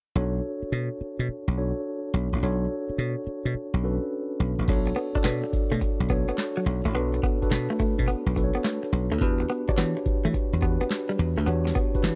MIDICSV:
0, 0, Header, 1, 7, 480
1, 0, Start_track
1, 0, Key_signature, 2, "minor"
1, 0, Tempo, 566038
1, 130, Time_signature, 4, 2, 24, 8
1, 10305, End_track
2, 0, Start_track
2, 0, Title_t, "Tine electric piano"
2, 0, Program_c, 0, 4
2, 133, Note_on_c, 0, 62, 84
2, 136, Note_on_c, 0, 66, 79
2, 138, Note_on_c, 0, 69, 77
2, 143, Note_on_c, 0, 73, 94
2, 311, Control_c, 0, 64, 127
2, 1001, Note_off_c, 0, 62, 0
2, 1002, Note_off_c, 0, 66, 0
2, 1003, Note_off_c, 0, 69, 0
2, 1006, Note_off_c, 0, 73, 0
2, 1334, Note_on_c, 0, 62, 81
2, 1336, Note_on_c, 0, 66, 71
2, 1341, Note_on_c, 0, 69, 69
2, 1341, Note_on_c, 0, 73, 84
2, 1988, Note_off_c, 0, 62, 0
2, 1989, Note_off_c, 0, 66, 0
2, 1991, Note_off_c, 0, 69, 0
2, 1991, Note_off_c, 0, 73, 0
2, 2055, Note_on_c, 0, 62, 86
2, 2059, Note_on_c, 0, 66, 82
2, 2061, Note_on_c, 0, 69, 81
2, 2064, Note_on_c, 0, 73, 98
2, 2922, Note_off_c, 0, 62, 0
2, 2924, Note_off_c, 0, 66, 0
2, 2925, Note_off_c, 0, 69, 0
2, 2926, Note_off_c, 0, 73, 0
2, 3250, Note_on_c, 0, 61, 69
2, 3253, Note_on_c, 0, 66, 76
2, 3259, Note_on_c, 0, 69, 73
2, 3263, Note_on_c, 0, 71, 89
2, 3305, Note_on_c, 0, 62, 78
2, 3323, Note_off_c, 0, 61, 0
2, 3907, Note_off_c, 0, 66, 0
2, 3911, Note_off_c, 0, 69, 0
2, 3912, Note_off_c, 0, 71, 0
2, 3933, Note_off_c, 0, 62, 0
2, 3971, Note_on_c, 0, 62, 83
2, 3975, Note_on_c, 0, 66, 79
2, 3980, Note_on_c, 0, 69, 83
2, 3983, Control_c, 0, 64, 0
2, 3984, Note_on_c, 0, 73, 94
2, 4155, Control_c, 0, 64, 127
2, 4306, Note_off_c, 0, 62, 0
2, 4308, Note_off_c, 0, 66, 0
2, 4311, Note_off_c, 0, 69, 0
2, 4313, Note_off_c, 0, 73, 0
2, 4367, Note_on_c, 0, 62, 87
2, 4370, Note_on_c, 0, 66, 70
2, 4374, Note_on_c, 0, 69, 79
2, 4379, Note_on_c, 0, 74, 92
2, 5094, Note_off_c, 0, 62, 0
2, 5096, Note_off_c, 0, 66, 0
2, 5097, Note_off_c, 0, 69, 0
2, 5100, Note_off_c, 0, 74, 0
2, 5172, Note_on_c, 0, 62, 78
2, 5176, Note_on_c, 0, 66, 81
2, 5178, Note_on_c, 0, 69, 75
2, 5184, Note_on_c, 0, 73, 98
2, 5827, Note_off_c, 0, 62, 0
2, 5829, Note_off_c, 0, 66, 0
2, 5830, Note_off_c, 0, 69, 0
2, 5833, Note_off_c, 0, 73, 0
2, 5893, Note_on_c, 0, 62, 93
2, 5895, Note_on_c, 0, 66, 84
2, 5899, Note_on_c, 0, 69, 78
2, 5902, Note_on_c, 0, 71, 95
2, 6227, Note_off_c, 0, 62, 0
2, 6229, Note_off_c, 0, 66, 0
2, 6230, Note_off_c, 0, 69, 0
2, 6232, Note_off_c, 0, 71, 0
2, 6292, Note_on_c, 0, 62, 89
2, 6295, Note_on_c, 0, 66, 72
2, 6298, Note_on_c, 0, 69, 77
2, 6301, Note_on_c, 0, 71, 94
2, 7016, Note_off_c, 0, 62, 0
2, 7018, Note_off_c, 0, 66, 0
2, 7019, Note_off_c, 0, 69, 0
2, 7021, Note_off_c, 0, 71, 0
2, 7088, Note_on_c, 0, 62, 80
2, 7092, Note_on_c, 0, 66, 78
2, 7096, Note_on_c, 0, 69, 81
2, 7102, Note_on_c, 0, 71, 76
2, 7155, Note_on_c, 0, 73, 92
2, 7169, Note_off_c, 0, 71, 0
2, 7745, Note_off_c, 0, 62, 0
2, 7747, Note_off_c, 0, 66, 0
2, 7749, Note_off_c, 0, 69, 0
2, 7778, Note_off_c, 0, 73, 0
2, 7811, Note_on_c, 0, 62, 88
2, 7817, Note_on_c, 0, 66, 84
2, 7819, Note_on_c, 0, 67, 75
2, 7820, Control_c, 0, 64, 0
2, 7821, Note_on_c, 0, 71, 99
2, 7990, Control_c, 0, 64, 127
2, 8146, Note_off_c, 0, 62, 0
2, 8150, Note_off_c, 0, 66, 0
2, 8151, Note_off_c, 0, 67, 0
2, 8152, Note_off_c, 0, 71, 0
2, 8207, Note_on_c, 0, 62, 82
2, 8210, Note_on_c, 0, 66, 80
2, 8215, Note_on_c, 0, 67, 79
2, 8217, Note_on_c, 0, 73, 93
2, 8934, Note_off_c, 0, 62, 0
2, 8935, Note_off_c, 0, 66, 0
2, 8938, Note_off_c, 0, 67, 0
2, 8939, Note_off_c, 0, 73, 0
2, 9003, Note_on_c, 0, 62, 78
2, 9010, Note_on_c, 0, 66, 73
2, 9012, Note_on_c, 0, 67, 75
2, 9017, Note_on_c, 0, 71, 93
2, 9663, Note_off_c, 0, 62, 0
2, 9666, Note_off_c, 0, 66, 0
2, 9667, Note_off_c, 0, 67, 0
2, 9669, Note_off_c, 0, 71, 0
2, 9726, Note_on_c, 0, 62, 85
2, 9731, Note_on_c, 0, 66, 82
2, 9732, Note_on_c, 0, 67, 81
2, 9735, Note_on_c, 0, 73, 96
2, 10064, Note_off_c, 0, 62, 0
2, 10066, Note_off_c, 0, 66, 0
2, 10067, Note_off_c, 0, 67, 0
2, 10069, Note_off_c, 0, 73, 0
2, 10130, Note_on_c, 0, 62, 88
2, 10131, Note_on_c, 0, 66, 77
2, 10138, Note_on_c, 0, 67, 71
2, 10141, Note_on_c, 0, 71, 95
2, 10305, Note_off_c, 0, 62, 0
2, 10305, Note_off_c, 0, 66, 0
2, 10305, Note_off_c, 0, 67, 0
2, 10305, Note_off_c, 0, 71, 0
2, 10305, End_track
3, 0, Start_track
3, 0, Title_t, "Clean electric guitar"
3, 0, Program_c, 1, 27
3, 4207, Note_on_c, 1, 59, 80
3, 4327, Note_off_c, 1, 59, 0
3, 4370, Note_on_c, 1, 62, 79
3, 4430, Note_off_c, 1, 62, 0
3, 4444, Note_on_c, 1, 59, 72
3, 4566, Note_off_c, 1, 59, 0
3, 4847, Note_on_c, 1, 57, 69
3, 4908, Note_off_c, 1, 57, 0
3, 5172, Note_on_c, 1, 59, 83
3, 5291, Note_off_c, 1, 59, 0
3, 5331, Note_on_c, 1, 59, 79
3, 5390, Note_off_c, 1, 59, 0
3, 5572, Note_on_c, 1, 54, 64
3, 5631, Note_off_c, 1, 54, 0
3, 5811, Note_on_c, 1, 57, 72
3, 5871, Note_off_c, 1, 57, 0
3, 5891, Note_on_c, 1, 59, 78
3, 6010, Note_off_c, 1, 59, 0
3, 6135, Note_on_c, 1, 59, 81
3, 6253, Note_off_c, 1, 59, 0
3, 6531, Note_on_c, 1, 57, 75
3, 6590, Note_off_c, 1, 57, 0
3, 6612, Note_on_c, 1, 57, 81
3, 6730, Note_off_c, 1, 57, 0
3, 6849, Note_on_c, 1, 59, 89
3, 6969, Note_off_c, 1, 59, 0
3, 7250, Note_on_c, 1, 59, 81
3, 7310, Note_off_c, 1, 59, 0
3, 7330, Note_on_c, 1, 57, 83
3, 7449, Note_off_c, 1, 57, 0
3, 7731, Note_on_c, 1, 57, 71
3, 7790, Note_off_c, 1, 57, 0
3, 8054, Note_on_c, 1, 59, 80
3, 8172, Note_off_c, 1, 59, 0
3, 8216, Note_on_c, 1, 62, 77
3, 8273, Note_off_c, 1, 62, 0
3, 8292, Note_on_c, 1, 59, 75
3, 8411, Note_off_c, 1, 59, 0
3, 8691, Note_on_c, 1, 57, 74
3, 8751, Note_off_c, 1, 57, 0
3, 9009, Note_on_c, 1, 59, 82
3, 9129, Note_off_c, 1, 59, 0
3, 9168, Note_on_c, 1, 59, 83
3, 9228, Note_off_c, 1, 59, 0
3, 9406, Note_on_c, 1, 55, 66
3, 9467, Note_off_c, 1, 55, 0
3, 9647, Note_on_c, 1, 57, 70
3, 9708, Note_off_c, 1, 57, 0
3, 9722, Note_on_c, 1, 59, 76
3, 9844, Note_off_c, 1, 59, 0
3, 9966, Note_on_c, 1, 59, 81
3, 10087, Note_off_c, 1, 59, 0
3, 10305, End_track
4, 0, Start_track
4, 0, Title_t, "Slap bass"
4, 0, Program_c, 2, 36
4, 131, Note_on_c, 2, 35, 104
4, 333, Note_off_c, 2, 35, 0
4, 613, Note_on_c, 2, 47, 97
4, 746, Note_off_c, 2, 47, 0
4, 1012, Note_on_c, 2, 47, 86
4, 1079, Note_off_c, 2, 47, 0
4, 1252, Note_on_c, 2, 35, 76
4, 1453, Note_off_c, 2, 35, 0
4, 1812, Note_on_c, 2, 35, 97
4, 1946, Note_off_c, 2, 35, 0
4, 1973, Note_on_c, 2, 33, 77
4, 2039, Note_off_c, 2, 33, 0
4, 2057, Note_on_c, 2, 35, 108
4, 2256, Note_off_c, 2, 35, 0
4, 2530, Note_on_c, 2, 47, 99
4, 2665, Note_off_c, 2, 47, 0
4, 2929, Note_on_c, 2, 47, 86
4, 2997, Note_off_c, 2, 47, 0
4, 3168, Note_on_c, 2, 35, 85
4, 3371, Note_off_c, 2, 35, 0
4, 3730, Note_on_c, 2, 35, 91
4, 3865, Note_off_c, 2, 35, 0
4, 3889, Note_on_c, 2, 33, 83
4, 3957, Note_off_c, 2, 33, 0
4, 3969, Note_on_c, 2, 35, 100
4, 4172, Note_off_c, 2, 35, 0
4, 4452, Note_on_c, 2, 47, 101
4, 4586, Note_off_c, 2, 47, 0
4, 4846, Note_on_c, 2, 47, 89
4, 4915, Note_off_c, 2, 47, 0
4, 5088, Note_on_c, 2, 35, 83
4, 5291, Note_off_c, 2, 35, 0
4, 5648, Note_on_c, 2, 35, 94
4, 5783, Note_off_c, 2, 35, 0
4, 5810, Note_on_c, 2, 33, 83
4, 5890, Note_off_c, 2, 33, 0
4, 5890, Note_on_c, 2, 35, 109
4, 6092, Note_off_c, 2, 35, 0
4, 6370, Note_on_c, 2, 47, 97
4, 6505, Note_off_c, 2, 47, 0
4, 6771, Note_on_c, 2, 47, 86
4, 6838, Note_off_c, 2, 47, 0
4, 7006, Note_on_c, 2, 35, 81
4, 7210, Note_off_c, 2, 35, 0
4, 7568, Note_on_c, 2, 35, 94
4, 7704, Note_off_c, 2, 35, 0
4, 7728, Note_on_c, 2, 38, 96
4, 7796, Note_off_c, 2, 38, 0
4, 7812, Note_on_c, 2, 40, 112
4, 8013, Note_off_c, 2, 40, 0
4, 8290, Note_on_c, 2, 52, 97
4, 8425, Note_off_c, 2, 52, 0
4, 8692, Note_on_c, 2, 52, 93
4, 8759, Note_off_c, 2, 52, 0
4, 8930, Note_on_c, 2, 40, 71
4, 9132, Note_off_c, 2, 40, 0
4, 9489, Note_on_c, 2, 40, 94
4, 9624, Note_off_c, 2, 40, 0
4, 9648, Note_on_c, 2, 38, 87
4, 9716, Note_off_c, 2, 38, 0
4, 9726, Note_on_c, 2, 40, 117
4, 9930, Note_off_c, 2, 40, 0
4, 10206, Note_on_c, 2, 52, 104
4, 10305, Note_off_c, 2, 52, 0
4, 10305, End_track
5, 0, Start_track
5, 0, Title_t, "Muted clean electric guitar strokes"
5, 4131, Note_on_c, 9, 29, 46
5, 4216, Note_off_c, 9, 29, 0
5, 4610, Note_on_c, 9, 29, 41
5, 4695, Note_off_c, 9, 29, 0
5, 4930, Note_on_c, 9, 29, 48
5, 5015, Note_off_c, 9, 29, 0
5, 5653, Note_on_c, 9, 29, 45
5, 5738, Note_off_c, 9, 29, 0
5, 6055, Note_on_c, 9, 29, 44
5, 6140, Note_off_c, 9, 29, 0
5, 6370, Note_on_c, 9, 29, 43
5, 6455, Note_off_c, 9, 29, 0
5, 7092, Note_on_c, 9, 29, 45
5, 7177, Note_off_c, 9, 29, 0
5, 7488, Note_on_c, 9, 29, 37
5, 7573, Note_off_c, 9, 29, 0
5, 7972, Note_on_c, 9, 29, 44
5, 8057, Note_off_c, 9, 29, 0
5, 8454, Note_on_c, 9, 29, 41
5, 8539, Note_off_c, 9, 29, 0
5, 8771, Note_on_c, 9, 29, 44
5, 8856, Note_off_c, 9, 29, 0
5, 9492, Note_on_c, 9, 29, 41
5, 9577, Note_off_c, 9, 29, 0
5, 9883, Note_on_c, 9, 29, 45
5, 9968, Note_off_c, 9, 29, 0
5, 10211, Note_on_c, 9, 29, 44
5, 10296, Note_off_c, 9, 29, 0
5, 10305, End_track
6, 0, Start_track
6, 0, Title_t, "Muted slap bass strokes"
6, 529, Note_on_c, 9, 29, 45
6, 614, Note_off_c, 9, 29, 0
6, 855, Note_on_c, 9, 29, 48
6, 940, Note_off_c, 9, 29, 0
6, 1091, Note_on_c, 9, 29, 45
6, 1175, Note_off_c, 9, 29, 0
6, 2454, Note_on_c, 9, 29, 45
6, 2539, Note_off_c, 9, 29, 0
6, 2771, Note_on_c, 9, 29, 51
6, 2855, Note_off_c, 9, 29, 0
6, 3005, Note_on_c, 9, 29, 48
6, 3090, Note_off_c, 9, 29, 0
6, 4370, Note_on_c, 9, 29, 47
6, 4455, Note_off_c, 9, 29, 0
6, 4690, Note_on_c, 9, 29, 50
6, 4775, Note_off_c, 9, 29, 0
6, 4931, Note_on_c, 9, 29, 43
6, 5015, Note_off_c, 9, 29, 0
6, 6296, Note_on_c, 9, 29, 44
6, 6381, Note_off_c, 9, 29, 0
6, 6610, Note_on_c, 9, 29, 50
6, 6695, Note_off_c, 9, 29, 0
6, 6850, Note_on_c, 9, 29, 48
6, 6935, Note_off_c, 9, 29, 0
6, 8213, Note_on_c, 9, 29, 47
6, 8297, Note_off_c, 9, 29, 0
6, 8530, Note_on_c, 9, 29, 52
6, 8614, Note_off_c, 9, 29, 0
6, 8768, Note_on_c, 9, 29, 44
6, 8853, Note_off_c, 9, 29, 0
6, 10131, Note_on_c, 9, 29, 47
6, 10216, Note_off_c, 9, 29, 0
6, 10305, End_track
7, 0, Start_track
7, 0, Title_t, "Drums"
7, 3967, Note_on_c, 9, 42, 66
7, 3967, Note_on_c, 9, 49, 87
7, 3969, Note_on_c, 9, 36, 103
7, 4052, Note_off_c, 9, 42, 0
7, 4052, Note_off_c, 9, 49, 0
7, 4054, Note_off_c, 9, 36, 0
7, 4131, Note_on_c, 9, 42, 55
7, 4208, Note_off_c, 9, 42, 0
7, 4208, Note_on_c, 9, 42, 79
7, 4293, Note_off_c, 9, 42, 0
7, 4368, Note_on_c, 9, 42, 52
7, 4370, Note_on_c, 9, 36, 84
7, 4443, Note_on_c, 9, 39, 93
7, 4444, Note_on_c, 9, 38, 106
7, 4445, Note_off_c, 9, 42, 0
7, 4445, Note_on_c, 9, 42, 70
7, 4455, Note_off_c, 9, 36, 0
7, 4528, Note_off_c, 9, 39, 0
7, 4529, Note_off_c, 9, 38, 0
7, 4530, Note_off_c, 9, 42, 0
7, 4608, Note_on_c, 9, 42, 53
7, 4690, Note_on_c, 9, 36, 99
7, 4693, Note_off_c, 9, 42, 0
7, 4693, Note_on_c, 9, 42, 70
7, 4774, Note_off_c, 9, 36, 0
7, 4778, Note_off_c, 9, 42, 0
7, 4851, Note_on_c, 9, 42, 46
7, 4929, Note_on_c, 9, 36, 88
7, 4934, Note_off_c, 9, 42, 0
7, 4934, Note_on_c, 9, 42, 86
7, 5014, Note_off_c, 9, 36, 0
7, 5019, Note_off_c, 9, 42, 0
7, 5093, Note_on_c, 9, 42, 59
7, 5170, Note_on_c, 9, 36, 86
7, 5173, Note_off_c, 9, 42, 0
7, 5173, Note_on_c, 9, 42, 87
7, 5255, Note_off_c, 9, 36, 0
7, 5257, Note_off_c, 9, 42, 0
7, 5335, Note_on_c, 9, 42, 55
7, 5410, Note_on_c, 9, 39, 92
7, 5411, Note_off_c, 9, 42, 0
7, 5411, Note_on_c, 9, 38, 106
7, 5411, Note_on_c, 9, 42, 69
7, 5495, Note_off_c, 9, 39, 0
7, 5496, Note_off_c, 9, 38, 0
7, 5496, Note_off_c, 9, 42, 0
7, 5576, Note_on_c, 9, 42, 39
7, 5656, Note_off_c, 9, 42, 0
7, 5656, Note_on_c, 9, 42, 74
7, 5741, Note_off_c, 9, 42, 0
7, 5813, Note_on_c, 9, 42, 48
7, 5895, Note_off_c, 9, 42, 0
7, 5895, Note_on_c, 9, 42, 69
7, 5979, Note_off_c, 9, 42, 0
7, 6057, Note_on_c, 9, 42, 56
7, 6131, Note_on_c, 9, 36, 98
7, 6136, Note_off_c, 9, 42, 0
7, 6136, Note_on_c, 9, 42, 77
7, 6216, Note_off_c, 9, 36, 0
7, 6221, Note_off_c, 9, 42, 0
7, 6295, Note_on_c, 9, 36, 83
7, 6295, Note_on_c, 9, 42, 52
7, 6372, Note_on_c, 9, 39, 91
7, 6373, Note_on_c, 9, 38, 109
7, 6374, Note_off_c, 9, 42, 0
7, 6374, Note_on_c, 9, 42, 78
7, 6380, Note_off_c, 9, 36, 0
7, 6457, Note_off_c, 9, 39, 0
7, 6458, Note_off_c, 9, 38, 0
7, 6459, Note_off_c, 9, 42, 0
7, 6535, Note_on_c, 9, 42, 52
7, 6612, Note_off_c, 9, 42, 0
7, 6612, Note_on_c, 9, 36, 96
7, 6612, Note_on_c, 9, 42, 74
7, 6696, Note_off_c, 9, 36, 0
7, 6697, Note_off_c, 9, 42, 0
7, 6773, Note_on_c, 9, 36, 95
7, 6773, Note_on_c, 9, 42, 49
7, 6858, Note_off_c, 9, 36, 0
7, 6858, Note_off_c, 9, 42, 0
7, 6858, Note_on_c, 9, 42, 78
7, 6942, Note_off_c, 9, 42, 0
7, 7013, Note_on_c, 9, 42, 58
7, 7092, Note_on_c, 9, 36, 87
7, 7098, Note_off_c, 9, 42, 0
7, 7100, Note_on_c, 9, 42, 89
7, 7177, Note_off_c, 9, 36, 0
7, 7185, Note_off_c, 9, 42, 0
7, 7258, Note_on_c, 9, 42, 48
7, 7330, Note_on_c, 9, 39, 87
7, 7331, Note_off_c, 9, 42, 0
7, 7331, Note_on_c, 9, 38, 117
7, 7331, Note_on_c, 9, 42, 70
7, 7414, Note_off_c, 9, 39, 0
7, 7416, Note_off_c, 9, 38, 0
7, 7416, Note_off_c, 9, 42, 0
7, 7499, Note_on_c, 9, 42, 42
7, 7579, Note_off_c, 9, 42, 0
7, 7579, Note_on_c, 9, 42, 72
7, 7664, Note_off_c, 9, 42, 0
7, 7734, Note_on_c, 9, 42, 50
7, 7811, Note_on_c, 9, 36, 108
7, 7812, Note_off_c, 9, 42, 0
7, 7812, Note_on_c, 9, 42, 69
7, 7896, Note_off_c, 9, 36, 0
7, 7897, Note_off_c, 9, 42, 0
7, 7974, Note_on_c, 9, 42, 54
7, 8051, Note_off_c, 9, 42, 0
7, 8051, Note_on_c, 9, 42, 87
7, 8136, Note_off_c, 9, 42, 0
7, 8211, Note_on_c, 9, 42, 52
7, 8213, Note_on_c, 9, 36, 86
7, 8288, Note_on_c, 9, 39, 87
7, 8290, Note_on_c, 9, 38, 112
7, 8291, Note_off_c, 9, 42, 0
7, 8291, Note_on_c, 9, 42, 77
7, 8298, Note_off_c, 9, 36, 0
7, 8373, Note_off_c, 9, 39, 0
7, 8375, Note_off_c, 9, 38, 0
7, 8376, Note_off_c, 9, 42, 0
7, 8452, Note_on_c, 9, 42, 54
7, 8529, Note_off_c, 9, 42, 0
7, 8529, Note_on_c, 9, 36, 105
7, 8529, Note_on_c, 9, 42, 70
7, 8614, Note_off_c, 9, 36, 0
7, 8614, Note_off_c, 9, 42, 0
7, 8691, Note_on_c, 9, 42, 49
7, 8768, Note_on_c, 9, 36, 89
7, 8772, Note_off_c, 9, 42, 0
7, 8772, Note_on_c, 9, 42, 88
7, 8853, Note_off_c, 9, 36, 0
7, 8857, Note_off_c, 9, 42, 0
7, 8928, Note_on_c, 9, 42, 63
7, 9010, Note_on_c, 9, 36, 89
7, 9012, Note_off_c, 9, 42, 0
7, 9012, Note_on_c, 9, 42, 85
7, 9094, Note_off_c, 9, 36, 0
7, 9097, Note_off_c, 9, 42, 0
7, 9173, Note_on_c, 9, 42, 52
7, 9247, Note_on_c, 9, 39, 92
7, 9248, Note_off_c, 9, 42, 0
7, 9248, Note_on_c, 9, 42, 68
7, 9249, Note_on_c, 9, 38, 113
7, 9332, Note_off_c, 9, 39, 0
7, 9333, Note_off_c, 9, 38, 0
7, 9333, Note_off_c, 9, 42, 0
7, 9415, Note_on_c, 9, 42, 43
7, 9494, Note_off_c, 9, 42, 0
7, 9494, Note_on_c, 9, 42, 70
7, 9578, Note_off_c, 9, 42, 0
7, 9652, Note_on_c, 9, 42, 48
7, 9733, Note_off_c, 9, 42, 0
7, 9733, Note_on_c, 9, 42, 71
7, 9818, Note_off_c, 9, 42, 0
7, 9896, Note_on_c, 9, 38, 58
7, 9896, Note_on_c, 9, 42, 53
7, 9970, Note_on_c, 9, 36, 98
7, 9973, Note_off_c, 9, 42, 0
7, 9973, Note_on_c, 9, 42, 85
7, 9981, Note_off_c, 9, 38, 0
7, 10055, Note_off_c, 9, 36, 0
7, 10058, Note_off_c, 9, 42, 0
7, 10131, Note_on_c, 9, 42, 51
7, 10133, Note_on_c, 9, 36, 84
7, 10207, Note_on_c, 9, 39, 93
7, 10209, Note_on_c, 9, 38, 112
7, 10210, Note_off_c, 9, 42, 0
7, 10210, Note_on_c, 9, 42, 74
7, 10218, Note_off_c, 9, 36, 0
7, 10292, Note_off_c, 9, 39, 0
7, 10294, Note_off_c, 9, 38, 0
7, 10295, Note_off_c, 9, 42, 0
7, 10305, End_track
0, 0, End_of_file